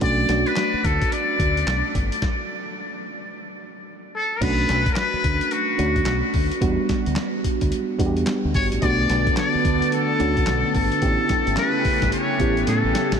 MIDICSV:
0, 0, Header, 1, 7, 480
1, 0, Start_track
1, 0, Key_signature, 2, "minor"
1, 0, Tempo, 550459
1, 12, Time_signature, 4, 2, 24, 8
1, 11509, End_track
2, 0, Start_track
2, 0, Title_t, "Muted trumpet"
2, 0, Program_c, 0, 59
2, 26, Note_on_c, 0, 74, 117
2, 410, Note_on_c, 0, 71, 98
2, 423, Note_off_c, 0, 74, 0
2, 739, Note_on_c, 0, 69, 89
2, 752, Note_off_c, 0, 71, 0
2, 981, Note_on_c, 0, 74, 105
2, 994, Note_off_c, 0, 69, 0
2, 1696, Note_off_c, 0, 74, 0
2, 3623, Note_on_c, 0, 69, 95
2, 3810, Note_on_c, 0, 70, 79
2, 3823, Note_off_c, 0, 69, 0
2, 3863, Note_on_c, 0, 71, 115
2, 3876, Note_off_c, 0, 70, 0
2, 4285, Note_off_c, 0, 71, 0
2, 4290, Note_on_c, 0, 70, 77
2, 4337, Note_on_c, 0, 71, 106
2, 4350, Note_off_c, 0, 70, 0
2, 4818, Note_on_c, 0, 66, 87
2, 4831, Note_off_c, 0, 71, 0
2, 5535, Note_off_c, 0, 66, 0
2, 7455, Note_on_c, 0, 73, 100
2, 7563, Note_off_c, 0, 73, 0
2, 7694, Note_on_c, 0, 74, 120
2, 8139, Note_off_c, 0, 74, 0
2, 8178, Note_on_c, 0, 74, 108
2, 8621, Note_off_c, 0, 74, 0
2, 8659, Note_on_c, 0, 69, 103
2, 9341, Note_off_c, 0, 69, 0
2, 9378, Note_on_c, 0, 69, 99
2, 10060, Note_off_c, 0, 69, 0
2, 10101, Note_on_c, 0, 71, 97
2, 10543, Note_off_c, 0, 71, 0
2, 10576, Note_on_c, 0, 73, 94
2, 11021, Note_off_c, 0, 73, 0
2, 11058, Note_on_c, 0, 69, 91
2, 11501, Note_off_c, 0, 69, 0
2, 11509, End_track
3, 0, Start_track
3, 0, Title_t, "FM electric piano"
3, 0, Program_c, 1, 5
3, 0, Control_c, 1, 64, 127
3, 8, Note_on_c, 1, 57, 71
3, 10, Note_on_c, 1, 61, 64
3, 12, Note_on_c, 1, 62, 64
3, 16, Note_on_c, 1, 66, 76
3, 25, Control_c, 1, 64, 0
3, 154, Control_c, 1, 64, 127
3, 231, Note_off_c, 1, 57, 0
3, 233, Note_off_c, 1, 61, 0
3, 234, Note_off_c, 1, 62, 0
3, 236, Note_off_c, 1, 66, 0
3, 250, Note_on_c, 1, 57, 64
3, 252, Note_on_c, 1, 61, 57
3, 256, Note_on_c, 1, 62, 63
3, 259, Note_on_c, 1, 66, 73
3, 1138, Note_off_c, 1, 57, 0
3, 1138, Note_off_c, 1, 61, 0
3, 1140, Note_off_c, 1, 62, 0
3, 1142, Note_off_c, 1, 66, 0
3, 1943, Control_c, 1, 64, 0
3, 3845, Note_on_c, 1, 57, 69
3, 3847, Note_on_c, 1, 61, 59
3, 3849, Note_on_c, 1, 62, 69
3, 3855, Note_on_c, 1, 66, 73
3, 4033, Control_c, 1, 64, 127
3, 4735, Note_off_c, 1, 57, 0
3, 4736, Note_off_c, 1, 61, 0
3, 4737, Note_off_c, 1, 62, 0
3, 4740, Note_off_c, 1, 66, 0
3, 5042, Note_on_c, 1, 57, 74
3, 5043, Note_on_c, 1, 61, 67
3, 5049, Note_on_c, 1, 62, 65
3, 5050, Note_on_c, 1, 66, 86
3, 5712, Note_off_c, 1, 57, 0
3, 5712, Note_off_c, 1, 61, 0
3, 5715, Note_off_c, 1, 62, 0
3, 5716, Note_off_c, 1, 66, 0
3, 5761, Note_on_c, 1, 55, 82
3, 5763, Note_on_c, 1, 59, 78
3, 5767, Note_on_c, 1, 62, 73
3, 5773, Note_on_c, 1, 66, 95
3, 5781, Control_c, 1, 64, 0
3, 5922, Control_c, 1, 64, 127
3, 6653, Note_off_c, 1, 55, 0
3, 6654, Note_off_c, 1, 59, 0
3, 6656, Note_off_c, 1, 62, 0
3, 6659, Note_off_c, 1, 66, 0
3, 6963, Note_on_c, 1, 55, 88
3, 6969, Note_on_c, 1, 59, 87
3, 6970, Note_on_c, 1, 62, 88
3, 6976, Note_on_c, 1, 66, 78
3, 7029, Note_on_c, 1, 67, 92
3, 7044, Note_off_c, 1, 66, 0
3, 7632, Note_off_c, 1, 55, 0
3, 7635, Note_off_c, 1, 59, 0
3, 7636, Note_off_c, 1, 62, 0
3, 7665, Note_off_c, 1, 67, 0
3, 7691, Note_on_c, 1, 57, 77
3, 7693, Note_on_c, 1, 59, 66
3, 7697, Note_on_c, 1, 62, 67
3, 7700, Note_on_c, 1, 66, 74
3, 7702, Control_c, 1, 64, 0
3, 7835, Control_c, 1, 64, 127
3, 8578, Note_off_c, 1, 57, 0
3, 8579, Note_off_c, 1, 59, 0
3, 8581, Note_off_c, 1, 62, 0
3, 8582, Note_off_c, 1, 66, 0
3, 8887, Note_on_c, 1, 57, 75
3, 8891, Note_on_c, 1, 61, 74
3, 8896, Note_on_c, 1, 62, 67
3, 8899, Note_on_c, 1, 66, 77
3, 9554, Note_off_c, 1, 57, 0
3, 9556, Note_off_c, 1, 61, 0
3, 9559, Note_off_c, 1, 62, 0
3, 9560, Note_off_c, 1, 66, 0
3, 9603, Note_on_c, 1, 59, 72
3, 9608, Note_on_c, 1, 61, 64
3, 9612, Note_on_c, 1, 64, 70
3, 9614, Note_on_c, 1, 67, 81
3, 9622, Control_c, 1, 64, 0
3, 9769, Control_c, 1, 64, 127
3, 10494, Note_off_c, 1, 59, 0
3, 10496, Note_off_c, 1, 61, 0
3, 10498, Note_off_c, 1, 64, 0
3, 10499, Note_off_c, 1, 67, 0
3, 10806, Note_on_c, 1, 59, 71
3, 10808, Note_on_c, 1, 61, 65
3, 10814, Note_on_c, 1, 64, 68
3, 10816, Note_on_c, 1, 67, 86
3, 11474, Note_off_c, 1, 59, 0
3, 11475, Note_off_c, 1, 61, 0
3, 11478, Note_off_c, 1, 64, 0
3, 11479, Note_off_c, 1, 67, 0
3, 11509, End_track
4, 0, Start_track
4, 0, Title_t, "Analog synth pad"
4, 0, Program_c, 2, 89
4, 7699, Note_on_c, 2, 50, 83
4, 7699, Note_on_c, 2, 59, 78
4, 7699, Note_on_c, 2, 69, 96
4, 9596, Note_off_c, 2, 50, 0
4, 9596, Note_off_c, 2, 59, 0
4, 9596, Note_off_c, 2, 69, 0
4, 9613, Note_on_c, 2, 67, 94
4, 9614, Note_on_c, 2, 57, 72
4, 9615, Note_on_c, 2, 49, 85
4, 11509, Note_off_c, 2, 49, 0
4, 11509, Note_off_c, 2, 57, 0
4, 11509, Note_off_c, 2, 67, 0
4, 11509, End_track
5, 0, Start_track
5, 0, Title_t, "Fingered electric bass"
5, 0, Program_c, 3, 33
5, 13, Note_on_c, 3, 35, 101
5, 213, Note_off_c, 3, 35, 0
5, 253, Note_on_c, 3, 35, 94
5, 377, Note_off_c, 3, 35, 0
5, 736, Note_on_c, 3, 38, 98
5, 859, Note_off_c, 3, 38, 0
5, 1216, Note_on_c, 3, 38, 85
5, 1415, Note_off_c, 3, 38, 0
5, 1455, Note_on_c, 3, 35, 83
5, 1578, Note_off_c, 3, 35, 0
5, 1697, Note_on_c, 3, 31, 89
5, 1820, Note_off_c, 3, 31, 0
5, 3849, Note_on_c, 3, 35, 97
5, 4051, Note_off_c, 3, 35, 0
5, 4093, Note_on_c, 3, 35, 93
5, 4217, Note_off_c, 3, 35, 0
5, 4568, Note_on_c, 3, 38, 90
5, 4694, Note_off_c, 3, 38, 0
5, 5049, Note_on_c, 3, 38, 86
5, 5251, Note_off_c, 3, 38, 0
5, 5286, Note_on_c, 3, 35, 96
5, 5413, Note_off_c, 3, 35, 0
5, 5530, Note_on_c, 3, 38, 86
5, 5655, Note_off_c, 3, 38, 0
5, 5770, Note_on_c, 3, 40, 113
5, 5895, Note_off_c, 3, 40, 0
5, 6162, Note_on_c, 3, 38, 81
5, 6238, Note_off_c, 3, 38, 0
5, 6642, Note_on_c, 3, 38, 83
5, 6718, Note_off_c, 3, 38, 0
5, 6969, Note_on_c, 3, 40, 86
5, 7171, Note_off_c, 3, 40, 0
5, 7366, Note_on_c, 3, 38, 87
5, 7440, Note_off_c, 3, 38, 0
5, 7454, Note_on_c, 3, 31, 86
5, 7577, Note_off_c, 3, 31, 0
5, 7609, Note_on_c, 3, 33, 89
5, 7681, Note_off_c, 3, 33, 0
5, 7693, Note_on_c, 3, 35, 107
5, 7893, Note_off_c, 3, 35, 0
5, 7934, Note_on_c, 3, 35, 106
5, 8058, Note_off_c, 3, 35, 0
5, 8414, Note_on_c, 3, 38, 106
5, 8538, Note_off_c, 3, 38, 0
5, 8898, Note_on_c, 3, 38, 88
5, 9096, Note_off_c, 3, 38, 0
5, 9137, Note_on_c, 3, 35, 100
5, 9260, Note_off_c, 3, 35, 0
5, 9372, Note_on_c, 3, 31, 88
5, 9497, Note_off_c, 3, 31, 0
5, 9610, Note_on_c, 3, 33, 105
5, 9735, Note_off_c, 3, 33, 0
5, 10001, Note_on_c, 3, 31, 88
5, 10077, Note_off_c, 3, 31, 0
5, 10484, Note_on_c, 3, 31, 89
5, 10559, Note_off_c, 3, 31, 0
5, 10810, Note_on_c, 3, 33, 95
5, 11012, Note_off_c, 3, 33, 0
5, 11050, Note_on_c, 3, 45, 97
5, 11175, Note_off_c, 3, 45, 0
5, 11201, Note_on_c, 3, 33, 89
5, 11277, Note_off_c, 3, 33, 0
5, 11441, Note_on_c, 3, 33, 86
5, 11509, Note_off_c, 3, 33, 0
5, 11509, End_track
6, 0, Start_track
6, 0, Title_t, "Muted fingered electric bass strokes"
6, 642, Note_on_c, 9, 29, 45
6, 729, Note_off_c, 9, 29, 0
6, 4477, Note_on_c, 9, 29, 45
6, 4565, Note_off_c, 9, 29, 0
6, 6490, Note_on_c, 9, 29, 50
6, 6577, Note_off_c, 9, 29, 0
6, 8327, Note_on_c, 9, 29, 48
6, 8414, Note_off_c, 9, 29, 0
6, 10332, Note_on_c, 9, 29, 50
6, 10420, Note_off_c, 9, 29, 0
6, 11509, End_track
7, 0, Start_track
7, 0, Title_t, "Drums"
7, 11, Note_on_c, 9, 42, 69
7, 12, Note_on_c, 9, 36, 121
7, 98, Note_off_c, 9, 42, 0
7, 99, Note_off_c, 9, 36, 0
7, 251, Note_on_c, 9, 42, 76
7, 253, Note_on_c, 9, 38, 69
7, 338, Note_off_c, 9, 42, 0
7, 340, Note_off_c, 9, 38, 0
7, 405, Note_on_c, 9, 42, 43
7, 491, Note_on_c, 9, 39, 82
7, 492, Note_off_c, 9, 42, 0
7, 493, Note_on_c, 9, 38, 108
7, 493, Note_on_c, 9, 42, 62
7, 579, Note_off_c, 9, 39, 0
7, 580, Note_off_c, 9, 38, 0
7, 580, Note_off_c, 9, 42, 0
7, 735, Note_on_c, 9, 36, 85
7, 737, Note_on_c, 9, 42, 74
7, 822, Note_off_c, 9, 36, 0
7, 824, Note_off_c, 9, 42, 0
7, 885, Note_on_c, 9, 42, 51
7, 886, Note_on_c, 9, 36, 69
7, 972, Note_off_c, 9, 42, 0
7, 973, Note_off_c, 9, 36, 0
7, 978, Note_on_c, 9, 42, 78
7, 1065, Note_off_c, 9, 42, 0
7, 1214, Note_on_c, 9, 36, 98
7, 1219, Note_on_c, 9, 42, 61
7, 1301, Note_off_c, 9, 36, 0
7, 1306, Note_off_c, 9, 42, 0
7, 1371, Note_on_c, 9, 42, 43
7, 1459, Note_off_c, 9, 42, 0
7, 1461, Note_on_c, 9, 42, 73
7, 1462, Note_on_c, 9, 39, 85
7, 1463, Note_on_c, 9, 38, 113
7, 1549, Note_off_c, 9, 39, 0
7, 1549, Note_off_c, 9, 42, 0
7, 1550, Note_off_c, 9, 38, 0
7, 1699, Note_on_c, 9, 36, 98
7, 1701, Note_on_c, 9, 42, 74
7, 1786, Note_off_c, 9, 36, 0
7, 1788, Note_off_c, 9, 42, 0
7, 1850, Note_on_c, 9, 42, 60
7, 1936, Note_on_c, 9, 36, 110
7, 1937, Note_on_c, 9, 38, 88
7, 1938, Note_off_c, 9, 42, 0
7, 2023, Note_off_c, 9, 36, 0
7, 2024, Note_off_c, 9, 38, 0
7, 3850, Note_on_c, 9, 36, 121
7, 3851, Note_on_c, 9, 42, 72
7, 3851, Note_on_c, 9, 49, 98
7, 3938, Note_off_c, 9, 36, 0
7, 3938, Note_off_c, 9, 42, 0
7, 3938, Note_off_c, 9, 49, 0
7, 4088, Note_on_c, 9, 42, 73
7, 4090, Note_on_c, 9, 38, 68
7, 4175, Note_off_c, 9, 42, 0
7, 4177, Note_off_c, 9, 38, 0
7, 4238, Note_on_c, 9, 36, 99
7, 4239, Note_on_c, 9, 42, 44
7, 4326, Note_off_c, 9, 36, 0
7, 4327, Note_off_c, 9, 42, 0
7, 4327, Note_on_c, 9, 39, 84
7, 4329, Note_on_c, 9, 38, 114
7, 4329, Note_on_c, 9, 42, 64
7, 4415, Note_off_c, 9, 39, 0
7, 4416, Note_off_c, 9, 38, 0
7, 4416, Note_off_c, 9, 42, 0
7, 4569, Note_on_c, 9, 36, 86
7, 4571, Note_on_c, 9, 42, 75
7, 4656, Note_off_c, 9, 36, 0
7, 4658, Note_off_c, 9, 42, 0
7, 4719, Note_on_c, 9, 42, 54
7, 4806, Note_off_c, 9, 42, 0
7, 4806, Note_on_c, 9, 42, 83
7, 4893, Note_off_c, 9, 42, 0
7, 5047, Note_on_c, 9, 42, 69
7, 5135, Note_off_c, 9, 42, 0
7, 5196, Note_on_c, 9, 36, 93
7, 5196, Note_on_c, 9, 42, 43
7, 5284, Note_off_c, 9, 36, 0
7, 5284, Note_off_c, 9, 42, 0
7, 5284, Note_on_c, 9, 39, 85
7, 5284, Note_on_c, 9, 42, 76
7, 5285, Note_on_c, 9, 38, 118
7, 5371, Note_off_c, 9, 39, 0
7, 5371, Note_off_c, 9, 42, 0
7, 5372, Note_off_c, 9, 38, 0
7, 5526, Note_on_c, 9, 46, 71
7, 5529, Note_on_c, 9, 36, 102
7, 5613, Note_off_c, 9, 46, 0
7, 5617, Note_off_c, 9, 36, 0
7, 5681, Note_on_c, 9, 42, 59
7, 5768, Note_off_c, 9, 42, 0
7, 5769, Note_on_c, 9, 36, 125
7, 5769, Note_on_c, 9, 42, 78
7, 5856, Note_off_c, 9, 36, 0
7, 5857, Note_off_c, 9, 42, 0
7, 6009, Note_on_c, 9, 42, 73
7, 6010, Note_on_c, 9, 36, 88
7, 6011, Note_on_c, 9, 38, 67
7, 6096, Note_off_c, 9, 42, 0
7, 6097, Note_off_c, 9, 36, 0
7, 6098, Note_off_c, 9, 38, 0
7, 6160, Note_on_c, 9, 42, 44
7, 6244, Note_on_c, 9, 39, 90
7, 6245, Note_off_c, 9, 42, 0
7, 6245, Note_on_c, 9, 38, 110
7, 6245, Note_on_c, 9, 42, 61
7, 6331, Note_off_c, 9, 39, 0
7, 6332, Note_off_c, 9, 38, 0
7, 6332, Note_off_c, 9, 42, 0
7, 6490, Note_on_c, 9, 36, 86
7, 6492, Note_on_c, 9, 42, 80
7, 6577, Note_off_c, 9, 36, 0
7, 6579, Note_off_c, 9, 42, 0
7, 6638, Note_on_c, 9, 42, 59
7, 6641, Note_on_c, 9, 36, 76
7, 6726, Note_off_c, 9, 42, 0
7, 6728, Note_off_c, 9, 36, 0
7, 6730, Note_on_c, 9, 42, 78
7, 6817, Note_off_c, 9, 42, 0
7, 6969, Note_on_c, 9, 36, 97
7, 6973, Note_on_c, 9, 42, 69
7, 7056, Note_off_c, 9, 36, 0
7, 7060, Note_off_c, 9, 42, 0
7, 7120, Note_on_c, 9, 42, 43
7, 7208, Note_off_c, 9, 42, 0
7, 7209, Note_on_c, 9, 39, 86
7, 7209, Note_on_c, 9, 42, 82
7, 7210, Note_on_c, 9, 38, 103
7, 7296, Note_off_c, 9, 39, 0
7, 7296, Note_off_c, 9, 42, 0
7, 7298, Note_off_c, 9, 38, 0
7, 7451, Note_on_c, 9, 46, 82
7, 7452, Note_on_c, 9, 36, 101
7, 7538, Note_off_c, 9, 46, 0
7, 7539, Note_off_c, 9, 36, 0
7, 7603, Note_on_c, 9, 42, 64
7, 7690, Note_off_c, 9, 42, 0
7, 7691, Note_on_c, 9, 36, 123
7, 7691, Note_on_c, 9, 42, 72
7, 7778, Note_off_c, 9, 36, 0
7, 7778, Note_off_c, 9, 42, 0
7, 7931, Note_on_c, 9, 42, 81
7, 7933, Note_on_c, 9, 38, 67
7, 8018, Note_off_c, 9, 42, 0
7, 8020, Note_off_c, 9, 38, 0
7, 8081, Note_on_c, 9, 36, 100
7, 8082, Note_on_c, 9, 42, 45
7, 8168, Note_off_c, 9, 36, 0
7, 8169, Note_off_c, 9, 42, 0
7, 8170, Note_on_c, 9, 39, 87
7, 8171, Note_on_c, 9, 38, 108
7, 8171, Note_on_c, 9, 42, 64
7, 8257, Note_off_c, 9, 39, 0
7, 8259, Note_off_c, 9, 38, 0
7, 8259, Note_off_c, 9, 42, 0
7, 8413, Note_on_c, 9, 36, 84
7, 8415, Note_on_c, 9, 42, 75
7, 8500, Note_off_c, 9, 36, 0
7, 8502, Note_off_c, 9, 42, 0
7, 8564, Note_on_c, 9, 42, 54
7, 8652, Note_off_c, 9, 42, 0
7, 8652, Note_on_c, 9, 42, 87
7, 8739, Note_off_c, 9, 42, 0
7, 8893, Note_on_c, 9, 42, 68
7, 8980, Note_off_c, 9, 42, 0
7, 9040, Note_on_c, 9, 36, 98
7, 9042, Note_on_c, 9, 42, 45
7, 9127, Note_off_c, 9, 36, 0
7, 9127, Note_off_c, 9, 42, 0
7, 9127, Note_on_c, 9, 39, 93
7, 9127, Note_on_c, 9, 42, 80
7, 9128, Note_on_c, 9, 38, 116
7, 9214, Note_off_c, 9, 39, 0
7, 9214, Note_off_c, 9, 42, 0
7, 9216, Note_off_c, 9, 38, 0
7, 9370, Note_on_c, 9, 46, 82
7, 9372, Note_on_c, 9, 36, 101
7, 9457, Note_off_c, 9, 46, 0
7, 9459, Note_off_c, 9, 36, 0
7, 9520, Note_on_c, 9, 42, 59
7, 9608, Note_off_c, 9, 42, 0
7, 9608, Note_on_c, 9, 42, 71
7, 9610, Note_on_c, 9, 36, 124
7, 9695, Note_off_c, 9, 42, 0
7, 9698, Note_off_c, 9, 36, 0
7, 9846, Note_on_c, 9, 42, 83
7, 9848, Note_on_c, 9, 38, 67
7, 9851, Note_on_c, 9, 36, 92
7, 9933, Note_off_c, 9, 42, 0
7, 9935, Note_off_c, 9, 38, 0
7, 9938, Note_off_c, 9, 36, 0
7, 10001, Note_on_c, 9, 42, 50
7, 10087, Note_on_c, 9, 39, 94
7, 10088, Note_off_c, 9, 42, 0
7, 10088, Note_on_c, 9, 38, 105
7, 10088, Note_on_c, 9, 42, 67
7, 10174, Note_off_c, 9, 39, 0
7, 10175, Note_off_c, 9, 38, 0
7, 10175, Note_off_c, 9, 42, 0
7, 10331, Note_on_c, 9, 36, 91
7, 10331, Note_on_c, 9, 46, 75
7, 10418, Note_off_c, 9, 36, 0
7, 10418, Note_off_c, 9, 46, 0
7, 10481, Note_on_c, 9, 42, 55
7, 10482, Note_on_c, 9, 36, 78
7, 10483, Note_on_c, 9, 38, 56
7, 10568, Note_off_c, 9, 42, 0
7, 10569, Note_off_c, 9, 36, 0
7, 10570, Note_off_c, 9, 38, 0
7, 10570, Note_on_c, 9, 42, 78
7, 10657, Note_off_c, 9, 42, 0
7, 10809, Note_on_c, 9, 36, 100
7, 10810, Note_on_c, 9, 42, 71
7, 10897, Note_off_c, 9, 36, 0
7, 10897, Note_off_c, 9, 42, 0
7, 10962, Note_on_c, 9, 42, 41
7, 11049, Note_off_c, 9, 42, 0
7, 11049, Note_on_c, 9, 42, 85
7, 11051, Note_on_c, 9, 38, 59
7, 11136, Note_off_c, 9, 42, 0
7, 11138, Note_off_c, 9, 38, 0
7, 11292, Note_on_c, 9, 42, 77
7, 11293, Note_on_c, 9, 38, 95
7, 11380, Note_off_c, 9, 38, 0
7, 11380, Note_off_c, 9, 42, 0
7, 11441, Note_on_c, 9, 38, 96
7, 11443, Note_on_c, 9, 42, 57
7, 11509, Note_off_c, 9, 38, 0
7, 11509, Note_off_c, 9, 42, 0
7, 11509, End_track
0, 0, End_of_file